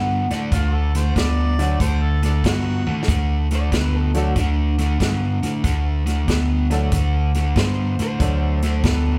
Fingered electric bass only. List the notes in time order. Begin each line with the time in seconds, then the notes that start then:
Already playing: G2
0.31 A2
0.52 D2
1.16 D2
1.80 D2
2.44 G2
2.87 A2
3.08 D2
3.72 D2
4.36 D2
5.00 G2
5.43 A2
5.64 D2
6.28 D2
6.92 D2
7.56 G2
7.99 A2
8.20 D2
8.84 D2